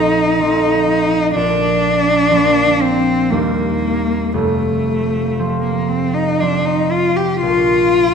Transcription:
Already playing: A#1 F3 A3 C4 D#4
0.39 F3 A3 C4
1.35 A#1 D4
2.31 F3 A#3 D4
2.82 C4
3.30 D#2 G3 A#3 C4
4.33 F1 F2 A3
5.39 F3 C4
5.63 A#3
5.89 C4
6.14 D#4
6.40 F3 C4 D4
6.66 D#4
6.91 F4
7.16 G4
7.42 A#1 F4

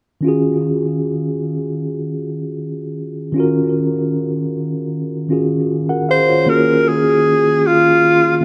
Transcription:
0.21 D#3 C#4 F4
0.26 F#4 G#4
3.32 D#3 C#4 F4
3.38 F#4 A#4
5.29 D#3 C#4 F4 F#4 G#4
5.89 A#4 F#5
6.09 G#4 C5 F5
6.29 F4 C#5
6.46 D#3 A#3 C#4 F4 F#4 G#4 A#4
6.88 G#4
7.67 F4
8.37 D#3 F4
8.41 A#3

